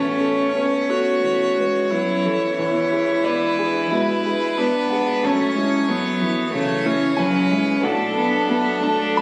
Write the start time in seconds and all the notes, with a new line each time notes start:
Already playing: A1 A3 B3 C#4 B4 C#5 A5
0.21 A4
0.55 B3 C#4
0.90 F#4 A4
1.23 E2 A3
1.58 G#3 B4
1.91 F#3 B3 E4
2.25 E3 A4
2.58 E2 G#3 D4 E4 B4 C#5
2.93 G#4
3.24 B3 B4 D5
3.59 G#4
3.90 B2 G#3 B4 E5
4.23 G#3 G#4
4.58 B3 D4
4.90 G#4 F#5
5.23 F#2 F#3 A3 C#4 E4 C#5 A5
5.56 G#3 E4
5.87 F#3 A3 B3
6.21 E3 E4
6.53 C#3 A3 C#5
6.86 C#4 E4
7.17 F#3 A3 C#4 B4 G#5
7.50 G#3 E4
7.83 B1 A3 D4 A4 B4 F#5
8.16 B3 D4
8.49 A3 B3
8.83 A3 D4 A5
9.17 F#2 G#3 B5